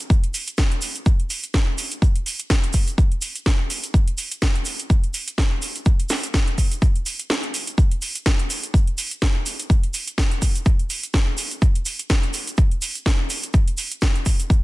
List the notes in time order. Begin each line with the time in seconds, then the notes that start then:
0.10 kick, shaker
0.24 closed hi-hat
0.34 open hi-hat, shaker
0.47 closed hi-hat, shaker
0.57 kick, snare, shaker
0.72 closed hi-hat
0.82 open hi-hat, shaker
0.95 closed hi-hat, shaker
1.06 kick, shaker
1.20 closed hi-hat
1.30 open hi-hat, shaker
1.43 closed hi-hat, shaker
1.54 kick, snare, shaker
1.78 open hi-hat, shaker
1.91 closed hi-hat, shaker
2.02 kick, shaker
2.16 closed hi-hat
2.26 open hi-hat, shaker
2.39 closed hi-hat, shaker
2.50 kick, snare, shaker
2.64 closed hi-hat
2.73 kick, open hi-hat, shaker
2.87 closed hi-hat, shaker
2.98 kick, shaker
3.12 closed hi-hat
3.22 open hi-hat, shaker
3.35 closed hi-hat, shaker
3.46 kick, snare, shaker
3.70 open hi-hat, shaker
3.83 closed hi-hat, shaker
3.94 kick, shaker
4.08 closed hi-hat
4.18 open hi-hat, shaker
4.32 closed hi-hat, shaker
4.42 kick, snare, shaker
4.55 closed hi-hat
4.65 open hi-hat, shaker
4.79 closed hi-hat, shaker
4.90 kick, shaker
5.04 closed hi-hat
5.14 open hi-hat, shaker
5.28 closed hi-hat, shaker
5.38 kick, snare, shaker
5.62 open hi-hat, shaker
5.75 closed hi-hat, shaker
5.86 kick, shaker
6.00 closed hi-hat
6.09 snare, open hi-hat, shaker
6.23 closed hi-hat, shaker
6.34 kick, snare, shaker
6.48 closed hi-hat
6.58 kick, open hi-hat, shaker
6.72 closed hi-hat, shaker
6.82 kick, shaker
6.96 closed hi-hat
7.06 open hi-hat, shaker
7.19 closed hi-hat, shaker
7.30 snare, shaker
7.43 closed hi-hat
7.54 open hi-hat, shaker
7.67 closed hi-hat, shaker
7.78 kick, shaker
7.91 closed hi-hat
8.02 open hi-hat, shaker
8.15 closed hi-hat, shaker
8.26 kick, snare, shaker
8.39 closed hi-hat
8.50 open hi-hat, shaker
8.63 closed hi-hat, shaker
8.74 kick, shaker
8.87 closed hi-hat
8.98 open hi-hat, shaker
9.11 closed hi-hat, shaker
9.22 kick, snare, shaker
9.46 open hi-hat, shaker
9.59 closed hi-hat, shaker
9.70 kick, shaker
9.83 closed hi-hat
9.94 open hi-hat, shaker
10.07 closed hi-hat, shaker
10.18 kick, snare, shaker
10.31 closed hi-hat
10.42 kick, open hi-hat, shaker
10.55 closed hi-hat, shaker
10.66 kick, shaker
10.79 closed hi-hat
10.90 open hi-hat, shaker
11.03 closed hi-hat, shaker
11.14 kick, snare, shaker
11.38 open hi-hat, shaker
11.51 closed hi-hat, shaker
11.62 kick, shaker
11.75 closed hi-hat
11.86 open hi-hat, shaker
11.99 closed hi-hat, shaker
12.10 kick, snare, shaker
12.23 closed hi-hat
12.34 open hi-hat, shaker
12.47 closed hi-hat, shaker
12.57 kick, shaker
12.71 closed hi-hat
12.82 open hi-hat, shaker
12.95 closed hi-hat, shaker
13.06 kick, snare, shaker
13.30 open hi-hat, shaker
13.43 closed hi-hat, shaker
13.54 kick, shaker
13.68 closed hi-hat
13.78 open hi-hat, shaker
13.91 closed hi-hat, shaker
14.01 kick, snare, shaker
14.15 closed hi-hat
14.26 kick, open hi-hat, shaker
14.40 closed hi-hat, shaker
14.50 kick, shaker